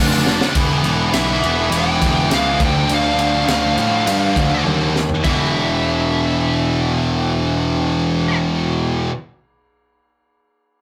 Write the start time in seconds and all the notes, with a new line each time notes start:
Already playing: F1 D3 A3 D4
0.00 D4 F4
0.08 D4 F4
0.16 D4 F4
0.24 D4 F4, snare
0.31 D4 F4
0.39 D4 F4, snare
0.47 D4 F4
0.55 E1 E3 G3 B3, kick, ride
0.62 E3 G3 B3
0.70 E3 G3 B3
0.78 E3 G3 B3
0.84 E1 E3 G3 B3, ride
0.92 E3 G3 B3
1.00 E3 G3 B3
1.08 E3 G3 B3
1.12 B1 E3 G3 B3 E5, snare, ride
1.23 E3 G3 B3
1.31 E3 G3 B3
1.39 E1 E3 G3 B3
1.44 E3 G3 B3, ride
1.53 E3 G3 B3
1.61 E3 G3 B3
1.69 E1 E3 G3 B3, ride
1.76 E3 G3 B3 G5
1.83 E3 G3 B3
1.91 E3 G3 B3
1.99 E1 E3 G3 B3, kick, ride
2.06 E3 G3 B3
2.14 E3 G3 B3
2.21 E3 G3 B3
2.29 C#2 E3 G3 B3, snare, ride
2.34 E3 G3 B3 F5
2.45 E3 G3 B3
2.52 E3 G3 B3
2.60 D2 D3 F3 A3, kick, ride
2.65 D3 F3 A3 G5
2.74 D3 F3 A3
2.82 D3 F3 A3
2.89 D2 D3 F3 A3, ride
2.94 F5
2.98 D3 F3 A3
3.05 D3 F3 A3
3.13 D3 F3 A3
3.19 D3 F3 A3, ride
3.27 D3 F3 A3
3.35 D3 F3 A3
3.43 D3 F3 A3
3.48 D2 D3 F3 A3, snare, ride
3.58 D3 F3 A3
3.66 D3 F3 A3
3.74 A2 D3 F3 A3, ride
3.81 D3 F3 A3
3.88 D3 F3 A3
3.96 D3 F3 A3
4.03 G2 D3 F3 A3
4.07 ride
4.11 D3 F3 A3
4.19 D3 F3 A3
4.26 D3 F3 A3
4.34 D2 D3 F3 A3, kick, ride
4.41 D3 F3 A3
4.50 D3 F3 A3
4.56 D3 F3 A3
4.65 D#2 D3 F3 A3, high tom
4.72 D3 F3 A3
4.79 D3 F3 A3
4.88 D3 F3 A3
4.96 snare
5.09 floor tom
5.23 E1 E2 B2 E5, kick, crash
5.27 E3